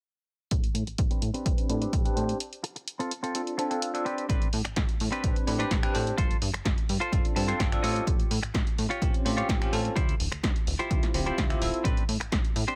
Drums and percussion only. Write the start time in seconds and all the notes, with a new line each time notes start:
0.51 kick, closed hi-hat
0.64 closed hi-hat
0.75 closed hi-hat
0.87 closed hi-hat
0.98 kick, closed hi-hat
1.11 closed hi-hat
1.22 closed hi-hat
1.34 closed hi-hat
1.46 kick, closed hi-hat
1.58 closed hi-hat
1.70 closed hi-hat
1.82 closed hi-hat
1.93 kick, closed hi-hat
2.06 closed hi-hat
2.17 closed hi-hat
2.29 closed hi-hat
2.40 closed hi-hat
2.53 closed hi-hat
2.64 closed hi-hat
2.76 closed hi-hat
2.88 closed hi-hat
3.00 closed hi-hat
3.11 closed hi-hat
3.24 closed hi-hat
3.35 closed hi-hat
3.47 closed hi-hat
3.59 closed hi-hat
3.71 closed hi-hat
3.82 closed hi-hat
3.95 closed hi-hat
4.06 closed hi-hat
4.18 closed hi-hat
4.29 kick, closed hi-hat
4.42 closed hi-hat
4.53 open hi-hat
4.65 finger snap, closed hi-hat
4.76 kick, snare, closed hi-hat
4.89 closed hi-hat
5.00 open hi-hat
5.13 closed hi-hat
5.24 kick, closed hi-hat
5.36 closed hi-hat
5.47 open hi-hat
5.60 closed hi-hat
5.71 kick, snare, closed hi-hat
5.83 finger snap, closed hi-hat
5.95 open hi-hat
6.07 closed hi-hat
6.18 kick, closed hi-hat
6.31 closed hi-hat
6.42 open hi-hat
6.54 finger snap, closed hi-hat
6.65 kick, snare, closed hi-hat
6.78 closed hi-hat
6.89 open hi-hat
7.02 closed hi-hat
7.13 kick, closed hi-hat
7.25 closed hi-hat
7.36 open hi-hat
7.49 closed hi-hat
7.60 kick, snare, closed hi-hat
7.72 finger snap, closed hi-hat
7.84 open hi-hat
7.96 closed hi-hat
8.07 kick, closed hi-hat
8.20 closed hi-hat
8.31 open hi-hat
8.43 finger snap, closed hi-hat
8.54 kick, snare, closed hi-hat
8.67 closed hi-hat
8.78 open hi-hat
8.91 closed hi-hat
9.02 kick, closed hi-hat
9.14 closed hi-hat
9.26 open hi-hat
9.38 closed hi-hat
9.49 kick, snare, closed hi-hat
9.62 finger snap, closed hi-hat
9.73 open hi-hat
9.85 closed hi-hat
9.96 kick, closed hi-hat
10.09 closed hi-hat
10.20 open hi-hat
10.32 finger snap, closed hi-hat
10.44 kick, snare, closed hi-hat
10.56 closed hi-hat
10.67 open hi-hat
10.79 closed hi-hat
10.91 kick, closed hi-hat
11.03 snare, closed hi-hat
11.14 open hi-hat
11.27 closed hi-hat
11.38 kick, snare, closed hi-hat
11.50 finger snap, closed hi-hat
11.62 open hi-hat
11.74 closed hi-hat
11.85 kick, closed hi-hat
11.97 closed hi-hat
12.09 open hi-hat
12.21 finger snap, closed hi-hat
12.32 kick, snare, closed hi-hat
12.45 closed hi-hat
12.56 open hi-hat
12.68 closed hi-hat